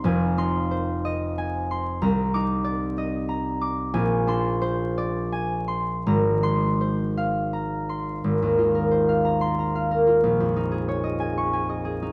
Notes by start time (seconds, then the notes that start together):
Already playing: D#4 C5 D#5 C6
0.04 F1 F2 G#5
0.38 D#4 C6
0.71 C5
1.05 D#5
1.38 G#5
1.71 C6
2.02 C2 A#5
2.34 D#4 D6
2.64 D5
2.98 D#5
3.29 A#5
3.61 D6
3.94 A#1 G#5
4.27 D4 C6
4.61 C5
4.98 D5
5.32 G#5
5.68 C6
6.07 G#1 A#5
6.43 C6
6.81 C5
7.17 F5
7.53 A#5
7.89 C6
8.24 G#1
8.42 D#2
8.58 F4
8.75 A#4
8.91 C5
9.09 F5
9.25 A#5
9.41 C6
9.59 A#5
9.75 F5
9.91 A#4
10.07 F4
10.23 A#1
10.40 F2
10.56 D#4
10.71 G#4
10.89 C#5
11.04 D#5
11.20 G#5
11.38 C#6
11.53 G#5
11.69 D#5
11.85 G#4
12.02 D#4